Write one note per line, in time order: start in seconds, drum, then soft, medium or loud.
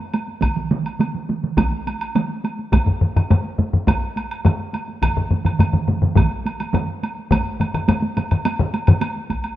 0.14 taiko high medium
0.14 high woodblock soft
0.28 taiko high soft
0.42 taiko medium
0.42 taiko mid medium
0.42 taiko high medium
0.42 high woodblock medium
0.56 taiko mid medium
0.56 taiko high soft
0.71 taiko mid loud
0.71 taiko high medium
0.86 taiko high soft
0.86 high woodblock soft
0.99 taiko mid medium
0.99 taiko high medium
0.99 high woodblock soft
1.14 taiko mid medium
1.29 taiko mid medium
1.29 taiko high medium
1.44 taiko mid medium
1.44 taiko high soft
1.57 taiko loud
1.57 taiko mid loud
1.57 taiko high medium
1.57 high woodblock medium
1.72 taiko high soft
1.87 taiko high medium
1.87 high woodblock soft
2.01 high woodblock soft
2.15 taiko mid loud
2.15 taiko high medium
2.15 high woodblock soft
2.30 taiko high soft
2.44 taiko high medium
2.44 high woodblock soft
2.59 taiko high soft
2.72 taiko loud
2.72 taiko low-mid medium
2.72 taiko high medium
2.72 high woodblock medium
2.87 taiko low-mid medium
2.87 taiko high soft
3.01 taiko low-mid medium
3.16 taiko low-mid medium
3.16 taiko high soft
3.16 high woodblock soft
3.30 taiko low-mid medium
3.30 taiko high medium
3.30 high woodblock soft
3.44 taiko high soft
3.59 taiko low-mid medium
3.59 taiko high medium
3.73 taiko low-mid medium
3.73 taiko high soft
3.87 taiko loud
3.87 taiko low-mid medium
3.87 taiko high medium
3.87 high woodblock medium
4.02 taiko high soft
4.16 taiko high soft
4.16 high woodblock soft
4.31 high woodblock soft
4.45 taiko low-mid medium
4.45 taiko high medium
4.45 high woodblock soft
4.59 taiko high soft
4.73 taiko high soft
4.73 high woodblock soft
4.88 taiko high soft
5.02 taiko medium
5.02 taiko low-mid medium
5.02 taiko mid medium
5.02 taiko high medium
5.02 high woodblock medium
5.17 taiko low-mid medium
5.17 taiko mid medium
5.17 taiko high soft
5.31 taiko low-mid medium
5.31 taiko mid medium
5.31 taiko high soft
5.45 taiko low-mid medium
5.45 taiko mid medium
5.45 taiko high soft
5.45 high woodblock soft
5.59 taiko low-mid medium
5.59 taiko mid medium
5.59 taiko high medium
5.59 high woodblock medium
5.73 taiko low-mid medium
5.73 taiko mid medium
5.73 taiko high soft
5.88 taiko low-mid medium
5.88 taiko mid medium
5.88 taiko high medium
6.02 taiko low-mid medium
6.02 taiko mid medium
6.02 taiko high soft
6.15 taiko loud
6.15 taiko low-mid medium
6.15 taiko mid loud
6.15 taiko high medium
6.15 high woodblock medium
6.32 taiko high soft
6.46 taiko high soft
6.46 high woodblock soft
6.60 taiko high soft
6.60 high woodblock soft
6.73 taiko low-mid medium
6.73 taiko mid loud
6.73 taiko high medium
6.73 high woodblock medium
6.89 taiko high soft
7.03 taiko high soft
7.03 high woodblock soft
7.18 taiko high soft
7.31 taiko medium
7.31 taiko low-mid loud
7.31 taiko high medium
7.31 high woodblock medium
7.47 taiko high soft
7.60 taiko low-mid medium
7.60 taiko high medium
7.60 high woodblock soft
7.74 taiko low-mid medium
7.74 taiko high soft
7.74 high woodblock soft
7.89 taiko low-mid medium
7.89 taiko high medium
7.89 high woodblock medium
8.02 taiko high medium
8.17 taiko low-mid medium
8.17 taiko high medium
8.17 high woodblock soft
8.31 taiko low-mid medium
8.31 taiko high soft
8.31 high woodblock soft
8.45 taiko high medium
8.45 high woodblock medium
8.59 taiko low-mid medium
8.59 taiko high soft
8.74 taiko high medium
8.74 high woodblock soft
8.87 taiko low-mid loud
8.87 taiko high soft
8.87 high woodblock soft
9.01 taiko high medium
9.01 high woodblock medium
9.16 taiko high soft
9.30 taiko medium
9.30 taiko high medium
9.30 high woodblock soft
9.44 taiko high soft
9.44 high woodblock soft